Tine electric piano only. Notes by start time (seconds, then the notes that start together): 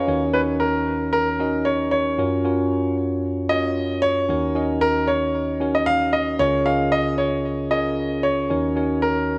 Already playing: C#4 F4 B4 F5 G#5 A#5
0.07 D#2 D#3 C#4 D#4 F#4 A#4 C#5
0.34 C#4 D#4 F#4 A#4 C#5
1.39 C#4 D#4 F#4 A#4 D#5
2.18 F#2 C#4 F4 F#4 A#4 C#5
2.44 C#4 F4 F#4 A#4 C#5
3.50 C#4 F4 F#4 A#4 C#5
4.29 D#2 D#3 C#4 D#4 F#4 A#4 C#5
4.55 C#4 D#4 F#4 A#4 D#5
5.60 C#4 D#4 F#4 A#4 C#5
6.39 C#2 C#3 C#4 F4 G#4 A#4 C#5
6.65 C#4 F4 G#4 A#4 D#5
7.71 C#4 F4 G#4 A#4 C#5
8.50 D#2 D#3 C#4 D#4 F#4 A#4 C#5
8.76 C#4 D#4 F#4 A#4 C#5